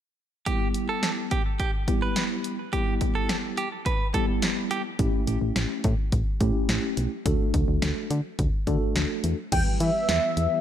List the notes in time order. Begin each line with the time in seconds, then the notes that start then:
0.46 G3 B3 E4 G4, kick, closed hi-hat
0.74 closed hi-hat
0.89 A4
1.03 snare, closed hi-hat
1.31 G4, kick, closed hi-hat
1.60 G4, kick, closed hi-hat
1.88 G3 B3 E4 G4, kick, closed hi-hat
2.02 B4
2.16 snare, closed hi-hat
2.44 closed hi-hat
2.73 G3 B3 E4 G4, kick, closed hi-hat
3.01 kick, closed hi-hat
3.15 A4
3.29 snare, closed hi-hat
3.57 G4, closed hi-hat
3.86 B4, kick, closed hi-hat
4.14 G3 B3 E4 G4 A4, kick, closed hi-hat
4.42 snare, closed hi-hat
4.71 G4, closed hi-hat
4.99 A1 A3 C#4 E4 G4, kick, closed hi-hat
5.27 A1, closed hi-hat
5.42 A1
5.56 A1, snare, closed hi-hat
5.84 A2, kick, closed hi-hat
6.12 A1, kick, closed hi-hat
6.41 A2 A3 C#4 E4 G4, kick, closed hi-hat
6.69 A1, snare, closed hi-hat
6.97 B1, closed hi-hat
7.26 D2 A3 D4 F#4 A4, kick, closed hi-hat
7.54 D2, kick, closed hi-hat
7.68 D2
7.82 D2, snare, closed hi-hat
8.11 D3, closed hi-hat
8.39 D2, kick, closed hi-hat
8.67 D3 A3 D4 F#4 A4, kick, closed hi-hat
8.96 D2, snare, closed hi-hat
9.24 E2, closed hi-hat
9.52 E2 E3 G3 B3 G5, kick, closed hi-hat, crash
9.80 E3 E5, closed hi-hat
10.09 E2, snare, closed hi-hat
10.37 E2, closed hi-hat